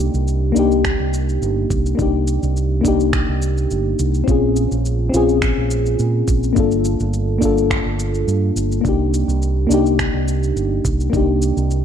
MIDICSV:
0, 0, Header, 1, 4, 480
1, 0, Start_track
1, 0, Key_signature, -3, "minor"
1, 0, Tempo, 571429
1, 1672, Time_signature, 4, 2, 24, 8
1, 9951, End_track
2, 0, Start_track
2, 0, Title_t, "FM electric piano"
2, 0, Program_c, 0, 5
2, 0, Control_c, 0, 64, 127
2, 0, Note_on_c, 0, 58, 74
2, 0, Note_on_c, 0, 62, 70
2, 0, Note_on_c, 0, 63, 69
2, 0, Note_on_c, 0, 67, 86
2, 429, Note_off_c, 0, 58, 0
2, 438, Note_off_c, 0, 62, 0
2, 438, Note_on_c, 0, 58, 90
2, 449, Note_off_c, 0, 63, 0
2, 458, Note_on_c, 0, 62, 76
2, 459, Note_off_c, 0, 67, 0
2, 478, Note_on_c, 0, 63, 81
2, 497, Note_on_c, 0, 67, 95
2, 1628, Note_off_c, 0, 58, 0
2, 1638, Note_off_c, 0, 62, 0
2, 1638, Note_on_c, 0, 58, 77
2, 1648, Note_off_c, 0, 63, 0
2, 1657, Note_on_c, 0, 62, 71
2, 1658, Note_off_c, 0, 67, 0
2, 1677, Note_on_c, 0, 63, 67
2, 1697, Note_on_c, 0, 67, 82
2, 2348, Note_off_c, 0, 58, 0
2, 2358, Note_off_c, 0, 62, 0
2, 2361, Note_on_c, 0, 58, 85
2, 2368, Note_off_c, 0, 63, 0
2, 2378, Note_off_c, 0, 67, 0
2, 2381, Note_on_c, 0, 62, 82
2, 2401, Note_on_c, 0, 63, 80
2, 2418, Note_on_c, 0, 67, 96
2, 3550, Note_off_c, 0, 58, 0
2, 3560, Note_off_c, 0, 62, 0
2, 3561, Note_on_c, 0, 60, 78
2, 3570, Note_off_c, 0, 63, 0
2, 3578, Note_off_c, 0, 67, 0
2, 3582, Note_on_c, 0, 61, 70
2, 3601, Note_on_c, 0, 65, 66
2, 3605, Control_c, 0, 64, 0
2, 3622, Note_on_c, 0, 68, 82
2, 3761, Control_c, 0, 64, 127
2, 4270, Note_off_c, 0, 60, 0
2, 4279, Note_on_c, 0, 60, 92
2, 4280, Note_off_c, 0, 61, 0
2, 4290, Note_off_c, 0, 65, 0
2, 4301, Note_off_c, 0, 68, 0
2, 4301, Note_on_c, 0, 61, 76
2, 4320, Note_on_c, 0, 65, 80
2, 4338, Note_on_c, 0, 68, 99
2, 5469, Note_off_c, 0, 60, 0
2, 5480, Note_off_c, 0, 61, 0
2, 5483, Note_on_c, 0, 58, 80
2, 5489, Note_off_c, 0, 65, 0
2, 5498, Note_off_c, 0, 68, 0
2, 5503, Note_on_c, 0, 62, 68
2, 5523, Control_c, 0, 64, 0
2, 5523, Note_on_c, 0, 65, 69
2, 5543, Note_on_c, 0, 69, 81
2, 5673, Control_c, 0, 64, 127
2, 6191, Note_off_c, 0, 58, 0
2, 6201, Note_off_c, 0, 62, 0
2, 6202, Note_on_c, 0, 58, 83
2, 6211, Note_off_c, 0, 65, 0
2, 6221, Note_off_c, 0, 69, 0
2, 6221, Note_on_c, 0, 62, 84
2, 6242, Note_on_c, 0, 65, 81
2, 6260, Note_on_c, 0, 69, 96
2, 7390, Note_off_c, 0, 58, 0
2, 7400, Note_off_c, 0, 62, 0
2, 7401, Note_on_c, 0, 58, 76
2, 7410, Note_off_c, 0, 65, 0
2, 7420, Note_off_c, 0, 69, 0
2, 7423, Note_on_c, 0, 62, 68
2, 7443, Note_on_c, 0, 63, 65
2, 7444, Control_c, 0, 64, 0
2, 7464, Note_on_c, 0, 67, 82
2, 7589, Control_c, 0, 64, 127
2, 8110, Note_off_c, 0, 58, 0
2, 8121, Note_off_c, 0, 62, 0
2, 8121, Note_on_c, 0, 58, 83
2, 8131, Note_off_c, 0, 63, 0
2, 8140, Note_on_c, 0, 62, 82
2, 8141, Note_off_c, 0, 67, 0
2, 8162, Note_on_c, 0, 63, 82
2, 8181, Note_on_c, 0, 67, 95
2, 9310, Note_off_c, 0, 58, 0
2, 9320, Note_off_c, 0, 62, 0
2, 9322, Note_on_c, 0, 58, 78
2, 9330, Note_off_c, 0, 63, 0
2, 9340, Note_off_c, 0, 67, 0
2, 9341, Note_on_c, 0, 62, 70
2, 9361, Note_on_c, 0, 63, 71
2, 9381, Note_on_c, 0, 67, 84
2, 9951, Note_off_c, 0, 58, 0
2, 9951, Note_off_c, 0, 62, 0
2, 9951, Note_off_c, 0, 63, 0
2, 9951, Note_off_c, 0, 67, 0
2, 9951, End_track
3, 0, Start_track
3, 0, Title_t, "Fingered electric bass"
3, 0, Program_c, 1, 33
3, 117, Note_on_c, 1, 36, 91
3, 428, Note_off_c, 1, 36, 0
3, 469, Note_on_c, 1, 36, 76
3, 790, Note_off_c, 1, 36, 0
3, 837, Note_on_c, 1, 36, 75
3, 1148, Note_off_c, 1, 36, 0
3, 1191, Note_on_c, 1, 31, 86
3, 1379, Note_off_c, 1, 31, 0
3, 1429, Note_on_c, 1, 36, 85
3, 1618, Note_off_c, 1, 36, 0
3, 1669, Note_on_c, 1, 36, 86
3, 1991, Note_off_c, 1, 36, 0
3, 2039, Note_on_c, 1, 36, 96
3, 2349, Note_off_c, 1, 36, 0
3, 2391, Note_on_c, 1, 36, 78
3, 2712, Note_off_c, 1, 36, 0
3, 2760, Note_on_c, 1, 36, 79
3, 3070, Note_off_c, 1, 36, 0
3, 3115, Note_on_c, 1, 31, 87
3, 3301, Note_off_c, 1, 31, 0
3, 3355, Note_on_c, 1, 36, 84
3, 3541, Note_off_c, 1, 36, 0
3, 3593, Note_on_c, 1, 34, 93
3, 3912, Note_off_c, 1, 34, 0
3, 3959, Note_on_c, 1, 34, 93
3, 4269, Note_off_c, 1, 34, 0
3, 4312, Note_on_c, 1, 34, 82
3, 4632, Note_off_c, 1, 34, 0
3, 4682, Note_on_c, 1, 34, 79
3, 4991, Note_off_c, 1, 34, 0
3, 5033, Note_on_c, 1, 46, 86
3, 5220, Note_off_c, 1, 46, 0
3, 5274, Note_on_c, 1, 34, 81
3, 5460, Note_off_c, 1, 34, 0
3, 5513, Note_on_c, 1, 31, 93
3, 5833, Note_off_c, 1, 31, 0
3, 5881, Note_on_c, 1, 31, 94
3, 6190, Note_off_c, 1, 31, 0
3, 6232, Note_on_c, 1, 31, 75
3, 6552, Note_off_c, 1, 31, 0
3, 6599, Note_on_c, 1, 31, 77
3, 6910, Note_off_c, 1, 31, 0
3, 6949, Note_on_c, 1, 43, 79
3, 7138, Note_off_c, 1, 43, 0
3, 7187, Note_on_c, 1, 31, 76
3, 7377, Note_off_c, 1, 31, 0
3, 7431, Note_on_c, 1, 36, 88
3, 7751, Note_off_c, 1, 36, 0
3, 7791, Note_on_c, 1, 36, 92
3, 8105, Note_off_c, 1, 36, 0
3, 8147, Note_on_c, 1, 36, 78
3, 8469, Note_off_c, 1, 36, 0
3, 8515, Note_on_c, 1, 36, 79
3, 8828, Note_off_c, 1, 36, 0
3, 8866, Note_on_c, 1, 31, 86
3, 9056, Note_off_c, 1, 31, 0
3, 9112, Note_on_c, 1, 36, 85
3, 9299, Note_off_c, 1, 36, 0
3, 9349, Note_on_c, 1, 36, 90
3, 9670, Note_off_c, 1, 36, 0
3, 9718, Note_on_c, 1, 36, 95
3, 9951, Note_off_c, 1, 36, 0
3, 9951, End_track
4, 0, Start_track
4, 0, Title_t, "Drums"
4, 120, Note_on_c, 9, 82, 30
4, 204, Note_off_c, 9, 82, 0
4, 233, Note_on_c, 9, 82, 42
4, 317, Note_off_c, 9, 82, 0
4, 471, Note_on_c, 9, 82, 77
4, 555, Note_off_c, 9, 82, 0
4, 602, Note_on_c, 9, 82, 30
4, 686, Note_off_c, 9, 82, 0
4, 710, Note_on_c, 9, 26, 71
4, 711, Note_on_c, 9, 36, 119
4, 712, Note_on_c, 9, 82, 43
4, 794, Note_off_c, 9, 26, 0
4, 795, Note_off_c, 9, 36, 0
4, 796, Note_off_c, 9, 82, 0
4, 954, Note_on_c, 9, 82, 73
4, 1038, Note_off_c, 9, 82, 0
4, 1084, Note_on_c, 9, 82, 31
4, 1168, Note_off_c, 9, 82, 0
4, 1196, Note_on_c, 9, 82, 42
4, 1280, Note_off_c, 9, 82, 0
4, 1431, Note_on_c, 9, 36, 102
4, 1434, Note_on_c, 9, 82, 74
4, 1515, Note_off_c, 9, 36, 0
4, 1518, Note_off_c, 9, 82, 0
4, 1562, Note_on_c, 9, 82, 30
4, 1646, Note_off_c, 9, 82, 0
4, 1671, Note_on_c, 9, 36, 107
4, 1672, Note_on_c, 9, 82, 44
4, 1755, Note_off_c, 9, 36, 0
4, 1756, Note_off_c, 9, 82, 0
4, 1910, Note_on_c, 9, 82, 73
4, 1994, Note_off_c, 9, 82, 0
4, 2040, Note_on_c, 9, 82, 31
4, 2124, Note_off_c, 9, 82, 0
4, 2156, Note_on_c, 9, 82, 42
4, 2240, Note_off_c, 9, 82, 0
4, 2391, Note_on_c, 9, 36, 63
4, 2394, Note_on_c, 9, 82, 80
4, 2475, Note_off_c, 9, 36, 0
4, 2478, Note_off_c, 9, 82, 0
4, 2522, Note_on_c, 9, 82, 30
4, 2606, Note_off_c, 9, 82, 0
4, 2630, Note_on_c, 9, 26, 76
4, 2631, Note_on_c, 9, 36, 118
4, 2632, Note_on_c, 9, 82, 44
4, 2714, Note_off_c, 9, 26, 0
4, 2715, Note_off_c, 9, 36, 0
4, 2716, Note_off_c, 9, 82, 0
4, 2873, Note_on_c, 9, 82, 80
4, 2957, Note_off_c, 9, 82, 0
4, 3004, Note_on_c, 9, 82, 32
4, 3088, Note_off_c, 9, 82, 0
4, 3113, Note_on_c, 9, 82, 45
4, 3197, Note_off_c, 9, 82, 0
4, 3352, Note_on_c, 9, 82, 77
4, 3436, Note_off_c, 9, 82, 0
4, 3481, Note_on_c, 9, 82, 32
4, 3565, Note_off_c, 9, 82, 0
4, 3593, Note_on_c, 9, 36, 107
4, 3596, Note_on_c, 9, 82, 41
4, 3677, Note_off_c, 9, 36, 0
4, 3680, Note_off_c, 9, 82, 0
4, 3833, Note_on_c, 9, 82, 78
4, 3917, Note_off_c, 9, 82, 0
4, 3962, Note_on_c, 9, 82, 32
4, 4046, Note_off_c, 9, 82, 0
4, 4077, Note_on_c, 9, 82, 45
4, 4161, Note_off_c, 9, 82, 0
4, 4317, Note_on_c, 9, 82, 76
4, 4401, Note_off_c, 9, 82, 0
4, 4444, Note_on_c, 9, 82, 31
4, 4528, Note_off_c, 9, 82, 0
4, 4552, Note_on_c, 9, 26, 71
4, 4554, Note_on_c, 9, 36, 126
4, 4554, Note_on_c, 9, 82, 44
4, 4636, Note_off_c, 9, 26, 0
4, 4638, Note_off_c, 9, 36, 0
4, 4638, Note_off_c, 9, 82, 0
4, 4793, Note_on_c, 9, 82, 80
4, 4877, Note_off_c, 9, 82, 0
4, 4922, Note_on_c, 9, 82, 33
4, 5006, Note_off_c, 9, 82, 0
4, 5032, Note_on_c, 9, 82, 44
4, 5116, Note_off_c, 9, 82, 0
4, 5273, Note_on_c, 9, 36, 102
4, 5273, Note_on_c, 9, 82, 72
4, 5357, Note_off_c, 9, 36, 0
4, 5357, Note_off_c, 9, 82, 0
4, 5404, Note_on_c, 9, 82, 32
4, 5488, Note_off_c, 9, 82, 0
4, 5513, Note_on_c, 9, 36, 106
4, 5513, Note_on_c, 9, 82, 43
4, 5597, Note_off_c, 9, 36, 0
4, 5597, Note_off_c, 9, 82, 0
4, 5640, Note_on_c, 9, 82, 31
4, 5724, Note_off_c, 9, 82, 0
4, 5751, Note_on_c, 9, 82, 70
4, 5835, Note_off_c, 9, 82, 0
4, 5880, Note_on_c, 9, 82, 31
4, 5964, Note_off_c, 9, 82, 0
4, 5993, Note_on_c, 9, 82, 44
4, 6077, Note_off_c, 9, 82, 0
4, 6233, Note_on_c, 9, 36, 60
4, 6233, Note_on_c, 9, 82, 75
4, 6317, Note_off_c, 9, 36, 0
4, 6317, Note_off_c, 9, 82, 0
4, 6365, Note_on_c, 9, 82, 30
4, 6449, Note_off_c, 9, 82, 0
4, 6473, Note_on_c, 9, 36, 121
4, 6476, Note_on_c, 9, 26, 76
4, 6477, Note_on_c, 9, 82, 45
4, 6557, Note_off_c, 9, 36, 0
4, 6560, Note_off_c, 9, 26, 0
4, 6561, Note_off_c, 9, 82, 0
4, 6715, Note_on_c, 9, 82, 79
4, 6799, Note_off_c, 9, 82, 0
4, 6842, Note_on_c, 9, 82, 33
4, 6926, Note_off_c, 9, 82, 0
4, 6957, Note_on_c, 9, 82, 45
4, 7041, Note_off_c, 9, 82, 0
4, 7194, Note_on_c, 9, 82, 74
4, 7278, Note_off_c, 9, 82, 0
4, 7324, Note_on_c, 9, 82, 34
4, 7408, Note_off_c, 9, 82, 0
4, 7432, Note_on_c, 9, 36, 106
4, 7437, Note_on_c, 9, 82, 40
4, 7516, Note_off_c, 9, 36, 0
4, 7521, Note_off_c, 9, 82, 0
4, 7676, Note_on_c, 9, 82, 66
4, 7760, Note_off_c, 9, 82, 0
4, 7806, Note_on_c, 9, 82, 32
4, 7890, Note_off_c, 9, 82, 0
4, 7915, Note_on_c, 9, 82, 41
4, 7999, Note_off_c, 9, 82, 0
4, 8155, Note_on_c, 9, 82, 79
4, 8239, Note_off_c, 9, 82, 0
4, 8284, Note_on_c, 9, 82, 31
4, 8368, Note_off_c, 9, 82, 0
4, 8392, Note_on_c, 9, 36, 114
4, 8393, Note_on_c, 9, 26, 69
4, 8395, Note_on_c, 9, 82, 44
4, 8476, Note_off_c, 9, 36, 0
4, 8477, Note_off_c, 9, 26, 0
4, 8479, Note_off_c, 9, 82, 0
4, 8635, Note_on_c, 9, 82, 79
4, 8719, Note_off_c, 9, 82, 0
4, 8764, Note_on_c, 9, 82, 33
4, 8848, Note_off_c, 9, 82, 0
4, 8877, Note_on_c, 9, 82, 44
4, 8961, Note_off_c, 9, 82, 0
4, 9112, Note_on_c, 9, 36, 100
4, 9114, Note_on_c, 9, 82, 77
4, 9196, Note_off_c, 9, 36, 0
4, 9198, Note_off_c, 9, 82, 0
4, 9243, Note_on_c, 9, 82, 32
4, 9327, Note_off_c, 9, 82, 0
4, 9351, Note_on_c, 9, 36, 103
4, 9356, Note_on_c, 9, 82, 42
4, 9435, Note_off_c, 9, 36, 0
4, 9440, Note_off_c, 9, 82, 0
4, 9592, Note_on_c, 9, 82, 69
4, 9676, Note_off_c, 9, 82, 0
4, 9721, Note_on_c, 9, 82, 28
4, 9805, Note_off_c, 9, 82, 0
4, 9834, Note_on_c, 9, 82, 41
4, 9918, Note_off_c, 9, 82, 0
4, 9951, End_track
0, 0, End_of_file